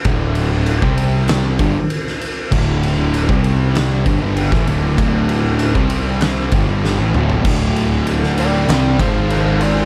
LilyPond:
<<
  \new Staff \with { instrumentName = "Lead electric guitar" } { \time 4/4 \key c \mixolydian \tempo 4 = 97 r1 | r1 | r1 | r4. <d'' g''>8 <d'' g''>8 <c'' f''>8 <c'' f''>8 <f' d''>8 | }
  \new Staff \with { instrumentName = "Distorted electric guitar" } { \clef bass \time 4/4 \key c \mixolydian <d, a, d>4~ <d, a, d>16 <c g c'>4~ <c g c'>16 <g, d>16 r4 r16 | <d, a, d>4~ <d, a, d>16 <c g c'>4~ <c g c'>16 <g, d>16 <g, d g>8 <a, e>16 <d, a, d>8 | <d, a, d>4~ <d, a, d>16 <c g c'>4~ <c g c'>16 <g, d>16 <g, d g>8 <a, e>16 <d, a, d>8 | <d, a, d>2 <c g c'>8 <gis, dis gis>4. | }
  \new Staff \with { instrumentName = "Distorted electric guitar" } { \clef bass \time 4/4 \key c \mixolydian <d, a, d>4~ <d, a, d>16 <c g c'>4~ <c g c'>16 <g, d>16 r4 r16 | <d, a, d>4~ <d, a, d>16 <c g c'>4~ <c g c'>16 <g, d>16 <g, d g>8 <a, e>16 <d, a, d>8 | <d, a, d>4~ <d, a, d>16 <c g c'>4~ <c g c'>16 <g, d>16 <g, d g>8 <a, e>16 <d, a, d>8 | <d, a, d>2 <c g c'>8 <gis, dis gis>4. | }
  \new Staff \with { instrumentName = "Distorted electric guitar" } { \clef bass \time 4/4 \key c \mixolydian <d, a, d>4~ <d, a, d>16 <c g c'>4~ <c g c'>16 <g, d>16 r4 r16 | <d, a, d>4~ <d, a, d>16 <c g c'>4~ <c g c'>16 <g, d>16 <g, d g>8 <a, e>16 <d, a, d>8 | <d, a, d>4~ <d, a, d>16 <c g c'>4~ <c g c'>16 <g, d>16 <g, d g>8 <a, e>16 <d, a, d>8 | <d, a, d>2 <c g c'>8 <gis, dis gis>4. | }
  \new Staff \with { instrumentName = "Picked electric bass" } { \clef bass \time 4/4 \key c \mixolydian d,,4~ d,,16 c,4~ c,16 g,,16 r4 r16 | d,,4~ d,,16 c,4~ c,16 g,,16 g,,8 a,,16 d,,8 | d,,4~ d,,16 c,4~ c,16 g,,16 g,,8 a,,16 d,,8 | d,,2 c,8 gis,,4. | }
  \new DrumStaff \with { instrumentName = "Drums" } \drummode { \time 4/4 <bd cymr>8 cymr8 cymr16 bd16 cymr8 <cymr sn>8 <bd cymr>8 cymr16 sn16 cymr8 | <cymc bd>8 cymr8 cymr16 bd16 cymr8 <cymr sn>8 <bd cymr>8 cymr16 <bd sn>16 cymr8 | <bd cymr>8 cymr8 cymr16 bd16 cymr8 <cymr sn>8 <bd cymr>8 sn8 toml16 tomfh16 | <cymc bd>8 cymr8 cymr16 sn16 cymr8 <cymr sn>8 <bd cymr>8 cymr8 cymr8 | }
>>